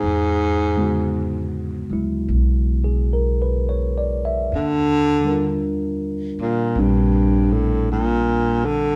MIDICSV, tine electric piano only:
0, 0, Header, 1, 2, 480
1, 0, Start_track
1, 0, Tempo, 1119403
1, 17, Time_signature, 4, 2, 24, 8
1, 3841, End_track
2, 0, Start_track
2, 0, Title_t, "Tine electric piano"
2, 0, Program_c, 0, 4
2, 0, Control_c, 0, 64, 127
2, 23, Control_c, 0, 64, 0
2, 99, Control_c, 0, 64, 127
2, 326, Note_on_c, 0, 50, 38
2, 331, Note_on_c, 0, 56, 38
2, 335, Note_on_c, 0, 59, 34
2, 340, Note_on_c, 0, 49, 36
2, 346, Note_on_c, 0, 66, 39
2, 811, Note_off_c, 0, 56, 0
2, 816, Note_on_c, 0, 56, 32
2, 820, Note_on_c, 0, 54, 31
2, 827, Note_on_c, 0, 64, 37
2, 1219, Note_on_c, 0, 68, 38
2, 1343, Note_on_c, 0, 70, 37
2, 1370, Note_off_c, 0, 68, 0
2, 1466, Note_on_c, 0, 71, 39
2, 1509, Note_off_c, 0, 70, 0
2, 1582, Note_on_c, 0, 73, 39
2, 1683, Note_off_c, 0, 71, 0
2, 1705, Note_on_c, 0, 74, 39
2, 1784, Note_off_c, 0, 73, 0
2, 1823, Note_on_c, 0, 76, 44
2, 1852, Note_off_c, 0, 74, 0
2, 1935, Note_off_c, 0, 50, 0
2, 1937, Note_off_c, 0, 56, 0
2, 1939, Note_off_c, 0, 54, 0
2, 1940, Note_off_c, 0, 59, 0
2, 1942, Note_off_c, 0, 49, 0
2, 1943, Note_off_c, 0, 64, 0
2, 1945, Note_off_c, 0, 66, 0
2, 1945, Control_c, 0, 64, 0
2, 1989, Note_off_c, 0, 76, 0
2, 2023, Control_c, 0, 64, 127
2, 2236, Note_on_c, 0, 50, 40
2, 2247, Note_on_c, 0, 55, 38
2, 2258, Note_on_c, 0, 70, 35
2, 2273, Note_on_c, 0, 62, 37
2, 2281, Note_on_c, 0, 65, 43
2, 2893, Note_off_c, 0, 55, 0
2, 2898, Note_on_c, 0, 55, 34
2, 2902, Note_on_c, 0, 60, 33
2, 2904, Note_off_c, 0, 62, 0
2, 2909, Note_on_c, 0, 62, 37
2, 3841, Note_off_c, 0, 50, 0
2, 3841, Note_off_c, 0, 55, 0
2, 3841, Note_off_c, 0, 60, 0
2, 3841, Note_off_c, 0, 62, 0
2, 3841, Note_off_c, 0, 65, 0
2, 3841, Note_off_c, 0, 70, 0
2, 3841, End_track
0, 0, End_of_file